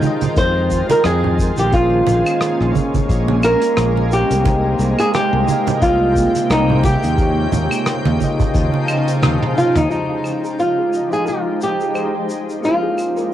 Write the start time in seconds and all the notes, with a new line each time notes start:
Already playing: D#3 G#3 D#4 F4 G4 C5 G5
0.00 G#3 D#4 F4, high conga, shaker
0.05 D#5 G5
0.21 closed hi-hat, high conga, low conga, shaker
0.36 F2 C5, kick, closed hi-hat, muted conga, shaker
0.71 kick, shaker
0.90 A#4, closed hi-hat, muted conga, shaker
1.04 F2 G#4, cross-stick, closed hi-hat, shaker
1.24 low conga
1.39 kick, shaker
1.57 A#1 G4, closed hi-hat, muted conga, shaker
1.69 A#3 C#4 F4, kick, closed hi-hat
1.73 A#3 C#4 F4 G#4 C5, shaker
2.07 A#1, muted conga, low conga, shaker
2.26 closed hi-hat, claves, shaker
2.41 cross-stick, closed hi-hat, shaker
2.60 A#1, cross-stick
2.71 A#3 C#4 F4, kick
2.75 G#4 C#5, muted conga, high conga, shaker
2.94 kick, closed hi-hat, high conga, low conga, shaker
3.09 A#1, kick, closed hi-hat, shaker
3.28 muted conga
3.43 A#4, claves, shaker
3.61 closed hi-hat, shaker
3.77 A#1, cross-stick, closed hi-hat, shaker
3.97 muted conga
4.12 G4, shaker
4.31 C2, closed hi-hat, shaker
4.42 C3 A#3 D#4 G4 G5, kick, closed hi-hat, muted conga, shaker
4.47 G#3 C5
4.79 C2, shaker
4.99 G#4, closed hi-hat, claves, shaker
5.14 G4, cross-stick, closed hi-hat, muted conga, shaker
5.33 C2
5.44 A#3 D#4 G4, shaker
5.48 G#3 D#5, high conga
5.67 closed hi-hat, muted conga, high conga, low conga, shaker
5.82 C2 F4, kick, closed hi-hat, shaker
6.16 kick, shaker
6.35 closed hi-hat, muted conga, shaker
6.50 C2 D#4, cross-stick, closed hi-hat, shaker
6.70 low conga
6.83 G4, kick, muted conga, shaker
7.03 D#2, closed hi-hat, shaker
7.15 C#3 F3 A#3 D#4 F4, kick, closed hi-hat, shaker
7.21 G4 C#5
7.52 D#2, muted conga, low conga, shaker
7.71 closed hi-hat, claves, shaker
7.86 cross-stick, closed hi-hat, shaker
8.05 D#2, cross-stick, muted conga
8.17 A#3 D#4 F4, kick, shaker
8.21 G4 D#5, high conga
8.40 kick, closed hi-hat, high conga, low conga, shaker
8.54 D#2, kick, closed hi-hat, shaker
8.74 muted conga
8.88 claves, shaker
9.08 closed hi-hat, shaker
9.22 D#2, cross-stick, closed hi-hat, high tom, muted conga, shaker
9.42 high tom
9.58 F4, shaker
9.75 D#2 D#4, closed hi-hat, mid tom, high conga, shaker
9.87 G#3 D#4 F4
9.91 F3 G#3 D#4 G4 C5, shaker
10.10 G4
10.24 claves, shaker
10.44 G#4, shaker
10.59 F4 C5, shaker
10.78 G#4
10.89 G#3 D#4 F4, shaker
10.95 G4 D#5
11.13 G#4, shaker
11.27 F4, shaker
11.46 G4
11.61 G4, shaker
11.81 G#4, shaker
11.95 C5, claves, shaker
12.15 G#4
12.30 shaker
12.49 shaker
12.60 A#3 C#4 F4 G#4, shaker
12.65 F4 G#4 C5
12.82 G#4
12.98 claves, shaker
13.17 A#4, shaker